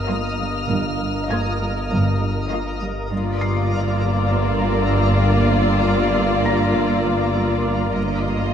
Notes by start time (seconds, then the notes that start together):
Already playing: G1 A#4 D#5 F5 D#6 F6
0.08 G3 A#3 F4 D#5
0.39 G3
0.69 G1 G2
0.99 G2
1.29 G2 A#3 F4 D#5 G#6
1.60 G2
1.90 G1 G2
2.21 G2
2.51 G3 A#3 F4 D#5
2.81 G3
3.11 G1 G2 A#3 F4 A#4 D5 F5 D6
3.41 G2 C7
3.72 G2 E6
4.02 G2
4.32 G2 F6
4.62 G2
4.94 G3
5.23 G3
5.53 G2
5.84 G2
6.14 G2
6.44 G2 A#5 A#6
6.74 G2
6.81 E6
7.05 G2
7.36 G3
7.66 G3
7.96 G1 G2 A#3 F4 A#4 D#5 F5
8.26 G2